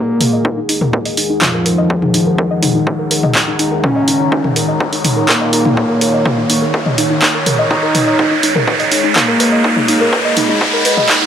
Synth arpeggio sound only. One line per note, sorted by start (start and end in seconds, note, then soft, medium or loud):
0.09 0.20 A#4 medium
0.21 0.29 A#4 medium
0.33 0.44 D#5 loud
0.45 0.50 D#4 medium
0.57 0.65 D#4 medium
0.69 0.77 D#4 medium
0.81 0.92 A#4 medium
0.93 1.01 A#4 medium
1.06 1.17 D#5 medium
1.18 1.22 D#4 medium
1.30 1.38 D#4 medium
1.42 1.50 D#4 medium
1.54 1.65 A#4 medium
1.66 1.74 A#4 medium
1.78 1.90 D#5 loud
1.90 1.95 D#4 medium
2.02 2.10 D#4 medium
2.14 2.22 D#4 medium
2.27 2.37 A#4 medium
2.39 2.47 A#4 medium
2.51 2.62 D#5 loud
2.63 2.68 D#4 medium
2.75 2.83 D#4 medium
2.87 2.95 D#4 medium
2.99 3.10 A#4 medium
3.11 3.19 A#4 medium
3.23 3.35 D#5 loud
3.35 3.40 D#4 medium
3.48 3.55 D#4 medium
3.59 3.68 D#4 medium
3.72 3.82 A#4 medium
3.84 3.92 A#4 medium
3.96 4.07 D#5 loud
4.08 4.13 D#4 medium
4.20 4.28 D#4 medium
4.32 4.40 D#4 medium
4.44 4.55 A#4 medium
4.56 4.64 A#4 medium
4.68 4.80 D#5 medium
4.80 4.85 D#4 medium
4.93 5.01 D#4 medium
5.05 5.13 D#4 medium
5.17 5.27 A#4 medium
5.29 5.37 A#4 medium
5.41 5.52 D#5 loud
5.53 5.58 D#4 medium
5.65 5.73 D#4 medium
5.77 5.85 D#4 medium
5.89 6.00 A#4 medium
6.01 6.09 A#4 medium
6.14 6.25 D#5 loud
6.25 6.30 D#4 medium
6.38 6.46 D#4 medium
6.50 6.58 D#4 medium
6.62 6.73 A#4 medium
6.74 6.82 A#4 medium
6.86 6.97 D#5 loud
6.98 7.03 D#4 medium
7.10 7.18 D#4 medium
7.22 7.30 D#4 medium
7.35 7.45 A#4 medium
7.46 7.55 A#4 medium
7.59 7.70 D#5 loud
7.71 7.79 D#4 medium
7.83 7.94 A#4 medium
7.95 8.03 B4 medium
8.07 8.18 D#5 loud
8.19 8.24 D#4 medium
8.31 8.39 D#4 medium
8.43 8.51 D#4 medium
8.55 8.67 A#4 medium
8.67 8.76 B4 medium
8.80 8.91 D#5 loud
8.92 8.96 D#4 medium
9.04 9.12 D#4 medium
9.16 9.24 D#4 medium
9.28 9.39 A#4 medium
9.40 9.48 B4 medium
9.52 9.64 D#5 loud
9.64 9.69 D#4 medium
9.77 9.84 D#4 medium
9.88 9.97 D#4 medium
10.01 10.12 A#4 medium
10.13 10.21 B4 medium
10.25 10.36 D#5 loud
10.37 10.42 D#4 medium
10.49 10.57 D#4 medium
10.61 10.69 D#4 medium
10.73 10.85 A#4 medium
10.85 10.93 B4 medium
10.98 11.09 D#5 loud
11.10 11.14 D#4 medium
11.22 11.26 D#4 medium